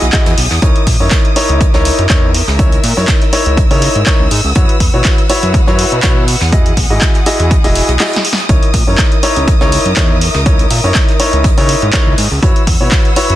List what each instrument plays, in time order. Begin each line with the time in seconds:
Already playing: violin section G#4 F#5 D#6
0.02 analog synth bass B1, closed hi-hat
0.13 grand piano E4 F#4 G#4 D#5, kick, snare, clap, closed hi-hat
0.26 analog synth bass E2, snare, closed hi-hat
0.38 analog synth bass B1, closed hi-hat, open hi-hat
0.51 analog synth bass E2, snare
0.62 analog synth bass C#2, grand piano D#4 E4 A#4 C#5, violin section A#4 E5, kick, closed hi-hat
0.76 closed hi-hat
0.87 analog synth bass A#2, kick, closed hi-hat, open hi-hat
1.00 analog synth bass F#2, grand piano D#4 E4 A#4 C#5
1.11 kick, snare, clap, closed hi-hat
1.25 closed hi-hat
1.36 grand piano D#4 E4 A#4 C#5, closed hi-hat, open hi-hat
1.49 analog synth bass C#2, closed hi-hat
1.61 kick, closed hi-hat
1.74 analog synth bass C#2, grand piano D#4 E4 A#4 C#5, snare
1.85 closed hi-hat, open hi-hat
1.99 analog synth bass F#2, closed hi-hat
2.10 analog synth bass E2, grand piano D#4 E4 A#4 C#5, kick, snare, clap, closed hi-hat
2.34 closed hi-hat, open hi-hat
2.48 analog synth bass C#2, snare
2.59 grand piano D#4 E4 A#4 C#5, violin section E6, kick, closed hi-hat
2.72 closed hi-hat
2.84 analog synth bass A#2, closed hi-hat, open hi-hat
2.97 analog synth bass F#2, grand piano D#4 E4 A#4 C#5, closed hi-hat
3.08 kick, snare, clap, closed hi-hat
3.21 snare, closed hi-hat
3.33 grand piano D#4 E4 A#4 C#5, closed hi-hat, open hi-hat
3.46 analog synth bass C#2, closed hi-hat
3.57 kick, closed hi-hat
3.71 analog synth bass C#3, grand piano D#4 E4 A#4 C#5, closed hi-hat, open hi-hat
3.81 closed hi-hat, open hi-hat
3.95 analog synth bass G#2, closed hi-hat
4.06 grand piano D#4 E4 A#4 C#5, kick, snare, clap, closed hi-hat
4.20 analog synth bass C#2
4.31 analog synth bass G#2, closed hi-hat, open hi-hat
4.44 analog synth bass C#2
4.55 analog synth bass F#2, grand piano E4 F#4 B4 C#5, violin section B4 F#5, kick, closed hi-hat
4.69 closed hi-hat
4.80 analog synth bass E2, kick, closed hi-hat, open hi-hat
4.94 analog synth bass B2, grand piano E4 F#4 B4 C#5
5.05 kick, snare, clap, closed hi-hat
5.18 closed hi-hat
5.29 grand piano E4 F#4 B4 C#5, closed hi-hat, open hi-hat
5.43 analog synth bass F#2, closed hi-hat
5.54 kick, closed hi-hat
5.67 analog synth bass F#2, grand piano E4 F#4 B4 C#5, snare
5.79 closed hi-hat, open hi-hat
5.92 analog synth bass B2, closed hi-hat
6.03 analog synth bass B2, grand piano E4 F#4 B4 C#5, kick, snare, clap, closed hi-hat
6.28 closed hi-hat, open hi-hat
6.40 analog synth bass E2, snare
6.52 grand piano E4 F#4 G#4 D#5, violin section G#4 D#6, kick, closed hi-hat
6.66 closed hi-hat
6.77 analog synth bass B1, kick, closed hi-hat, open hi-hat
6.90 analog synth bass G#2, grand piano E4 F#4 G#4 D#5, closed hi-hat
7.02 kick, snare, clap, closed hi-hat
7.14 snare, closed hi-hat
7.26 grand piano E4 F#4 G#4 D#5, closed hi-hat, open hi-hat
7.40 analog synth bass E2, closed hi-hat
7.51 kick, closed hi-hat
7.64 analog synth bass E1, grand piano E4 F#4 G#4 D#5, closed hi-hat, open hi-hat
7.75 closed hi-hat, open hi-hat
7.89 analog synth bass B1, closed hi-hat
8.00 grand piano E4 F#4 G#4 D#5, snare, clap, closed hi-hat, open hi-hat
8.13 snare, closed hi-hat
8.16 snare
8.25 closed hi-hat, open hi-hat
8.33 snare
8.38 snare, closed hi-hat
8.49 analog synth bass C#2, grand piano D#4 E4 A#4 C#5, violin section A#4 E5, kick, closed hi-hat
8.63 closed hi-hat
8.74 analog synth bass A#2, kick, closed hi-hat, open hi-hat
8.87 analog synth bass F#2, grand piano D#4 E4 A#4 C#5
8.98 kick, snare, clap, closed hi-hat
9.12 closed hi-hat
9.23 grand piano D#4 E4 A#4 C#5, closed hi-hat, open hi-hat
9.36 analog synth bass C#2, closed hi-hat
9.48 kick, closed hi-hat
9.61 analog synth bass C#2, grand piano D#4 E4 A#4 C#5, snare
9.72 closed hi-hat, open hi-hat
9.86 analog synth bass F#2, closed hi-hat
9.97 analog synth bass E2, grand piano D#4 E4 A#4 C#5, kick, snare, clap, closed hi-hat
10.21 closed hi-hat, open hi-hat
10.34 analog synth bass C#2, snare
10.46 grand piano D#4 E4 A#4 C#5, kick, closed hi-hat
10.59 closed hi-hat
10.70 analog synth bass A#2, closed hi-hat, open hi-hat
10.84 analog synth bass F#2, grand piano D#4 E4 A#4 C#5, closed hi-hat
10.95 kick, snare, clap, closed hi-hat
11.08 snare, closed hi-hat
11.20 grand piano D#4 E4 A#4 C#5, closed hi-hat, open hi-hat
11.33 analog synth bass C#2, closed hi-hat
11.44 kick, closed hi-hat
11.58 analog synth bass C#3, grand piano D#4 E4 A#4 C#5, closed hi-hat, open hi-hat
11.69 closed hi-hat, open hi-hat
11.82 analog synth bass G#2, closed hi-hat
11.93 grand piano D#4 E4 A#4 C#5, kick, snare, clap, closed hi-hat
12.07 analog synth bass C#2
12.18 analog synth bass G#2, closed hi-hat, open hi-hat
12.31 analog synth bass C#2
12.43 analog synth bass F#2, grand piano E4 F#4 B4 C#5, violin section B4 F#5 E6, kick, closed hi-hat
12.56 closed hi-hat
12.67 analog synth bass E2, kick, closed hi-hat, open hi-hat
12.81 analog synth bass B2, grand piano E4 F#4 B4 C#5
12.92 kick, snare, clap, closed hi-hat
13.05 closed hi-hat
13.16 grand piano E4 F#4 B4 C#5, closed hi-hat, open hi-hat
13.30 analog synth bass F#2, closed hi-hat